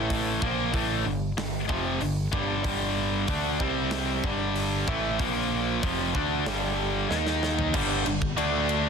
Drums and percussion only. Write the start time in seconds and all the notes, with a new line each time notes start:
0.10 kick, open hi-hat
0.42 kick
0.74 kick, open hi-hat
1.38 snare, open hi-hat
1.69 kick
2.01 open hi-hat
2.33 kick
2.64 kick, open hi-hat
3.28 kick, open hi-hat
3.60 kick
3.91 snare, open hi-hat
4.24 kick
4.56 open hi-hat
4.88 kick
5.19 kick, open hi-hat
5.83 kick, open hi-hat
6.15 kick
6.46 snare, open hi-hat
7.11 snare
7.27 snare
7.43 snare
7.59 floor tom
7.74 kick, crash
8.06 ride
8.22 kick
8.38 ride
8.69 ride